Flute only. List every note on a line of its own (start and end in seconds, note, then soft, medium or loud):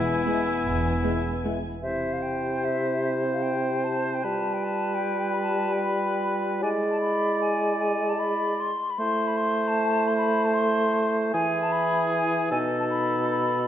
0.00 1.60 G#5 soft
1.82 2.14 E5 medium
2.13 2.24 F5 soft
2.22 2.66 G5 medium
2.65 3.03 E5 medium
3.04 3.11 E5 medium
3.33 3.44 F5 medium
3.43 3.86 G5 medium
3.84 4.16 A5 medium
4.14 4.25 G5 medium
4.24 4.55 A5 medium
4.54 4.66 G5 medium
4.64 4.96 A5 medium
4.95 5.35 G5 medium
5.34 5.42 B5 medium
5.42 5.74 A5 medium
5.73 5.83 G5 medium
5.83 6.42 B5 medium
6.62 6.69 G#5 medium
6.91 7.00 A5 medium
7.01 7.41 B5 medium
7.41 7.78 G#5 medium
7.79 8.11 G#5 medium
8.10 8.21 A5 medium
8.19 8.62 B5 medium
8.60 8.92 C6 medium
8.90 9.00 B5 medium
8.98 9.29 C6 medium
9.27 9.38 B5 medium
9.37 9.70 C6 medium
9.68 10.09 A5 medium
10.08 10.17 C6 medium
10.17 10.47 B5 medium
10.45 10.56 A5 medium
10.54 11.15 C6 medium
11.33 11.64 G#5 loud
11.63 11.74 A5 medium
11.72 12.12 B5 medium
12.13 12.51 G#5 medium
12.52 12.58 G#5 medium
12.80 12.85 A5 medium
12.90 13.30 B5 medium
13.31 13.68 B5 medium